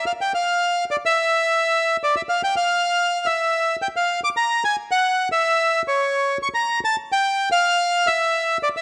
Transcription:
0, 0, Header, 1, 2, 480
1, 0, Start_track
1, 0, Tempo, 552486
1, 35, Time_signature, 4, 2, 24, 8
1, 7660, End_track
2, 0, Start_track
2, 0, Title_t, "Bandoneon"
2, 0, Program_c, 0, 23
2, 55, Note_on_c, 0, 77, 78
2, 105, Note_off_c, 0, 77, 0
2, 183, Note_on_c, 0, 79, 73
2, 282, Note_off_c, 0, 79, 0
2, 298, Note_on_c, 0, 77, 78
2, 734, Note_off_c, 0, 77, 0
2, 789, Note_on_c, 0, 74, 77
2, 836, Note_off_c, 0, 74, 0
2, 917, Note_on_c, 0, 76, 81
2, 1708, Note_off_c, 0, 76, 0
2, 1768, Note_on_c, 0, 74, 70
2, 1869, Note_off_c, 0, 74, 0
2, 1879, Note_on_c, 0, 76, 70
2, 1925, Note_off_c, 0, 76, 0
2, 1989, Note_on_c, 0, 77, 74
2, 2100, Note_off_c, 0, 77, 0
2, 2117, Note_on_c, 0, 79, 76
2, 2214, Note_off_c, 0, 79, 0
2, 2228, Note_on_c, 0, 77, 83
2, 2831, Note_on_c, 0, 76, 81
2, 2836, Note_off_c, 0, 77, 0
2, 3266, Note_off_c, 0, 76, 0
2, 3320, Note_on_c, 0, 79, 74
2, 3366, Note_off_c, 0, 79, 0
2, 3444, Note_on_c, 0, 77, 78
2, 3649, Note_off_c, 0, 77, 0
2, 3684, Note_on_c, 0, 86, 87
2, 3729, Note_off_c, 0, 86, 0
2, 3794, Note_on_c, 0, 82, 79
2, 4026, Note_off_c, 0, 82, 0
2, 4035, Note_on_c, 0, 80, 82
2, 4136, Note_off_c, 0, 80, 0
2, 4269, Note_on_c, 0, 78, 81
2, 4591, Note_off_c, 0, 78, 0
2, 4622, Note_on_c, 0, 76, 89
2, 5058, Note_off_c, 0, 76, 0
2, 5107, Note_on_c, 0, 73, 71
2, 5539, Note_off_c, 0, 73, 0
2, 5582, Note_on_c, 0, 85, 79
2, 5631, Note_off_c, 0, 85, 0
2, 5685, Note_on_c, 0, 82, 75
2, 5905, Note_off_c, 0, 82, 0
2, 5948, Note_on_c, 0, 81, 84
2, 6049, Note_off_c, 0, 81, 0
2, 6188, Note_on_c, 0, 79, 78
2, 6508, Note_off_c, 0, 79, 0
2, 6530, Note_on_c, 0, 77, 95
2, 7011, Note_on_c, 0, 76, 79
2, 7016, Note_off_c, 0, 77, 0
2, 7450, Note_off_c, 0, 76, 0
2, 7498, Note_on_c, 0, 74, 73
2, 7547, Note_off_c, 0, 74, 0
2, 7617, Note_on_c, 0, 76, 67
2, 7660, Note_off_c, 0, 76, 0
2, 7660, End_track
0, 0, End_of_file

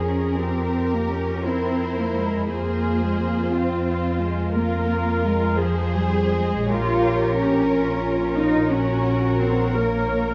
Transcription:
0, 0, Header, 1, 6, 480
1, 0, Start_track
1, 0, Key_signature, -4, "minor"
1, 0, Tempo, 710059
1, 1693, Time_signature, 12, 3, 24, 8
1, 1693, Tempo, 683371
1, 3613, Tempo, 708383
1, 4093, Tempo, 758534
1, 4573, Tempo, 664452
1, 6013, Tempo, 702576
1, 7137, End_track
2, 0, Start_track
2, 0, Title_t, "Violin section"
2, 0, Program_c, 0, 48
2, 0, Note_on_c, 0, 68, 33
2, 243, Note_off_c, 0, 68, 0
2, 261, Note_on_c, 0, 70, 32
2, 982, Note_off_c, 0, 70, 0
2, 982, Note_on_c, 0, 72, 35
2, 1685, Note_off_c, 0, 72, 0
2, 1694, Note_on_c, 0, 72, 35
2, 3104, Note_off_c, 0, 72, 0
2, 3131, Note_on_c, 0, 70, 36
2, 3847, Note_off_c, 0, 70, 0
2, 3850, Note_on_c, 0, 72, 43
2, 4573, Note_on_c, 0, 73, 41
2, 4575, Note_off_c, 0, 72, 0
2, 5985, Note_off_c, 0, 73, 0
2, 6017, Note_on_c, 0, 73, 38
2, 7137, Note_off_c, 0, 73, 0
2, 7137, End_track
3, 0, Start_track
3, 0, Title_t, "Violin section"
3, 0, Program_c, 1, 48
3, 39, Note_on_c, 1, 70, 34
3, 1678, Note_off_c, 1, 70, 0
3, 1704, Note_on_c, 1, 68, 37
3, 2404, Note_off_c, 1, 68, 0
3, 2424, Note_on_c, 1, 65, 32
3, 3137, Note_off_c, 1, 65, 0
3, 3144, Note_on_c, 1, 65, 40
3, 3840, Note_off_c, 1, 65, 0
3, 3856, Note_on_c, 1, 68, 47
3, 4578, Note_off_c, 1, 68, 0
3, 4580, Note_on_c, 1, 70, 44
3, 6017, Note_off_c, 1, 70, 0
3, 6023, Note_on_c, 1, 70, 46
3, 7137, Note_off_c, 1, 70, 0
3, 7137, End_track
4, 0, Start_track
4, 0, Title_t, "Viola section"
4, 0, Program_c, 2, 48
4, 0, Note_on_c, 2, 68, 28
4, 263, Note_off_c, 2, 68, 0
4, 263, Note_on_c, 2, 67, 35
4, 984, Note_off_c, 2, 67, 0
4, 988, Note_on_c, 2, 64, 31
4, 1696, Note_off_c, 2, 64, 0
4, 1702, Note_on_c, 2, 65, 33
4, 3135, Note_on_c, 2, 70, 42
4, 3136, Note_off_c, 2, 65, 0
4, 3835, Note_off_c, 2, 70, 0
4, 3846, Note_on_c, 2, 68, 38
4, 4573, Note_off_c, 2, 68, 0
4, 4575, Note_on_c, 2, 67, 41
4, 5284, Note_off_c, 2, 67, 0
4, 5310, Note_on_c, 2, 65, 37
4, 6006, Note_off_c, 2, 65, 0
4, 6021, Note_on_c, 2, 66, 45
4, 6730, Note_off_c, 2, 66, 0
4, 6731, Note_on_c, 2, 70, 37
4, 7137, Note_off_c, 2, 70, 0
4, 7137, End_track
5, 0, Start_track
5, 0, Title_t, "Cello section"
5, 0, Program_c, 3, 48
5, 15, Note_on_c, 3, 61, 41
5, 255, Note_off_c, 3, 61, 0
5, 257, Note_on_c, 3, 60, 44
5, 623, Note_off_c, 3, 60, 0
5, 633, Note_on_c, 3, 58, 39
5, 746, Note_on_c, 3, 61, 42
5, 748, Note_off_c, 3, 58, 0
5, 982, Note_off_c, 3, 61, 0
5, 983, Note_on_c, 3, 60, 44
5, 1335, Note_off_c, 3, 60, 0
5, 1339, Note_on_c, 3, 58, 41
5, 1454, Note_on_c, 3, 56, 43
5, 1456, Note_off_c, 3, 58, 0
5, 1693, Note_off_c, 3, 56, 0
5, 1699, Note_on_c, 3, 58, 49
5, 2057, Note_off_c, 3, 58, 0
5, 2069, Note_on_c, 3, 56, 45
5, 2177, Note_on_c, 3, 58, 43
5, 2184, Note_off_c, 3, 56, 0
5, 2407, Note_on_c, 3, 60, 49
5, 2412, Note_off_c, 3, 58, 0
5, 2877, Note_off_c, 3, 60, 0
5, 2891, Note_on_c, 3, 56, 54
5, 3132, Note_off_c, 3, 56, 0
5, 3134, Note_on_c, 3, 58, 53
5, 3614, Note_off_c, 3, 58, 0
5, 3614, Note_on_c, 3, 56, 46
5, 3848, Note_off_c, 3, 56, 0
5, 3851, Note_on_c, 3, 53, 58
5, 4090, Note_off_c, 3, 53, 0
5, 4095, Note_on_c, 3, 55, 53
5, 4336, Note_off_c, 3, 55, 0
5, 4339, Note_on_c, 3, 56, 55
5, 4574, Note_on_c, 3, 65, 68
5, 4576, Note_off_c, 3, 56, 0
5, 5063, Note_off_c, 3, 65, 0
5, 5063, Note_on_c, 3, 61, 56
5, 5756, Note_off_c, 3, 61, 0
5, 5774, Note_on_c, 3, 63, 63
5, 6015, Note_off_c, 3, 63, 0
5, 6015, Note_on_c, 3, 61, 64
5, 6486, Note_off_c, 3, 61, 0
5, 6493, Note_on_c, 3, 60, 52
5, 6730, Note_off_c, 3, 60, 0
5, 6735, Note_on_c, 3, 58, 51
5, 7137, Note_off_c, 3, 58, 0
5, 7137, End_track
6, 0, Start_track
6, 0, Title_t, "Double bass section"
6, 0, Program_c, 4, 48
6, 0, Note_on_c, 4, 41, 31
6, 1664, Note_off_c, 4, 41, 0
6, 1690, Note_on_c, 4, 41, 38
6, 4547, Note_off_c, 4, 41, 0
6, 4572, Note_on_c, 4, 34, 45
6, 7137, Note_off_c, 4, 34, 0
6, 7137, End_track
0, 0, End_of_file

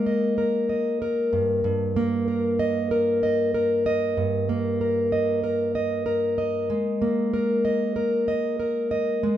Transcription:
0, 0, Header, 1, 2, 480
1, 0, Start_track
1, 0, Tempo, 631579
1, 1252, Time_signature, 4, 2, 24, 8
1, 7123, End_track
2, 0, Start_track
2, 0, Title_t, "Steel-string acoustic guitar"
2, 0, Program_c, 0, 25
2, 0, Note_on_c, 0, 56, 69
2, 0, Note_on_c, 0, 58, 47
2, 0, Note_on_c, 0, 70, 56
2, 49, Note_on_c, 0, 75, 54
2, 285, Note_off_c, 0, 70, 0
2, 288, Note_on_c, 0, 70, 52
2, 524, Note_off_c, 0, 75, 0
2, 527, Note_on_c, 0, 75, 50
2, 770, Note_off_c, 0, 70, 0
2, 773, Note_on_c, 0, 70, 52
2, 1009, Note_on_c, 0, 43, 72
2, 1068, Note_off_c, 0, 56, 0
2, 1239, Note_off_c, 0, 43, 0
2, 1249, Note_on_c, 0, 43, 69
2, 1490, Note_off_c, 0, 58, 0
2, 1493, Note_on_c, 0, 58, 55
2, 1729, Note_off_c, 0, 70, 0
2, 1732, Note_on_c, 0, 70, 52
2, 1969, Note_off_c, 0, 75, 0
2, 1972, Note_on_c, 0, 75, 56
2, 2210, Note_off_c, 0, 70, 0
2, 2213, Note_on_c, 0, 70, 52
2, 2452, Note_off_c, 0, 75, 0
2, 2455, Note_on_c, 0, 75, 51
2, 2691, Note_off_c, 0, 70, 0
2, 2694, Note_on_c, 0, 70, 52
2, 2931, Note_off_c, 0, 75, 0
2, 2934, Note_on_c, 0, 75, 57
2, 3162, Note_off_c, 0, 43, 0
2, 3171, Note_on_c, 0, 43, 69
2, 3410, Note_off_c, 0, 58, 0
2, 3414, Note_on_c, 0, 58, 48
2, 3653, Note_off_c, 0, 70, 0
2, 3656, Note_on_c, 0, 70, 53
2, 3890, Note_off_c, 0, 75, 0
2, 3893, Note_on_c, 0, 75, 58
2, 4128, Note_off_c, 0, 70, 0
2, 4131, Note_on_c, 0, 70, 54
2, 4368, Note_off_c, 0, 75, 0
2, 4371, Note_on_c, 0, 75, 50
2, 4602, Note_off_c, 0, 70, 0
2, 4605, Note_on_c, 0, 70, 51
2, 4846, Note_off_c, 0, 75, 0
2, 4849, Note_on_c, 0, 75, 52
2, 5091, Note_on_c, 0, 56, 64
2, 5092, Note_off_c, 0, 43, 0
2, 5329, Note_off_c, 0, 58, 0
2, 5332, Note_on_c, 0, 58, 48
2, 5572, Note_off_c, 0, 70, 0
2, 5575, Note_on_c, 0, 70, 54
2, 5809, Note_off_c, 0, 75, 0
2, 5812, Note_on_c, 0, 75, 60
2, 6047, Note_off_c, 0, 70, 0
2, 6050, Note_on_c, 0, 70, 53
2, 6289, Note_off_c, 0, 75, 0
2, 6292, Note_on_c, 0, 75, 54
2, 6529, Note_off_c, 0, 70, 0
2, 6533, Note_on_c, 0, 70, 50
2, 6769, Note_off_c, 0, 75, 0
2, 6773, Note_on_c, 0, 75, 64
2, 7008, Note_off_c, 0, 56, 0
2, 7017, Note_on_c, 0, 56, 72
2, 7123, Note_off_c, 0, 56, 0
2, 7123, Note_off_c, 0, 58, 0
2, 7123, Note_off_c, 0, 70, 0
2, 7123, Note_off_c, 0, 75, 0
2, 7123, End_track
0, 0, End_of_file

